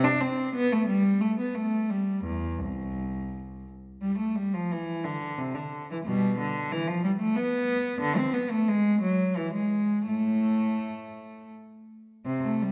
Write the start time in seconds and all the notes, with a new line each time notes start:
0.04 D4
0.21 C4
0.55 B3
0.73 A3
0.88 G3
1.21 A3
1.40 B3
1.55 A3
1.90 G3
2.25 E2
2.59 C2
4.02 G3
4.19 A3
4.36 G3
4.54 F3
4.72 E3
5.04 D3
5.38 C3
5.55 D3
5.91 E3
6.05 B2 G3
6.39 D3
6.72 E3
6.87 F3
7.04 G3
7.20 A3
7.36 B3
8.01 D3
8.17 C4
8.33 B3
8.50 A3
8.68 G#3
9.02 F#3
9.36 E3
9.53 G#3
10.08 A2 A3
12.26 C3
12.44 A3
12.62 G3